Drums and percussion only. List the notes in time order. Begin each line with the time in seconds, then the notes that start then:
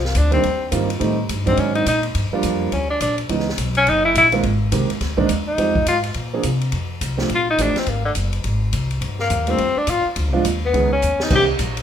0.05 snare
0.15 kick, hi-hat pedal, ride
0.32 ride
0.44 kick, ride
0.72 kick, hi-hat pedal, ride
0.90 ride
1.01 kick, ride
1.29 kick, hi-hat pedal, ride
1.47 kick, ride
1.57 kick, ride
1.75 ride
1.86 kick, hi-hat pedal, ride
2.03 ride
2.15 kick, ride
2.43 kick, hi-hat pedal, ride
2.72 kick, ride
3.01 kick, hi-hat pedal, ride
3.18 ride
3.29 kick, ride
3.40 snare
3.49 snare
3.58 kick, hi-hat pedal, ride
3.75 ride
3.87 kick, ride
4.15 kick, hi-hat pedal, ride
4.32 ride
4.43 kick, ride
4.72 kick, hi-hat pedal, ride
4.90 ride
5.01 kick, snare, ride
5.18 kick
5.29 hi-hat pedal, ride
5.58 kick, ride
5.75 kick
5.87 kick, hi-hat pedal, ride
6.04 ride
6.14 kick, ride
6.43 kick, hi-hat pedal, ride
6.61 ride
6.72 kick, ride
7.01 kick, hi-hat pedal, ride
7.19 snare
7.29 kick, ride
7.58 kick, hi-hat pedal, ride
7.76 snare, ride
7.87 kick, ride
8.15 kick, hi-hat pedal, ride
8.33 ride
8.44 kick, ride
8.73 kick, hi-hat pedal, ride
8.91 ride
9.02 kick, ride
9.19 snare
9.30 kick, hi-hat pedal, ride
9.47 ride
9.58 kick, ride
9.87 kick, hi-hat pedal, ride
10.16 kick, ride
10.45 kick, hi-hat pedal, ride
10.74 kick, ride
11.02 hi-hat pedal
11.20 snare
11.30 kick, crash
11.59 kick, hi-hat pedal, ride
11.77 ride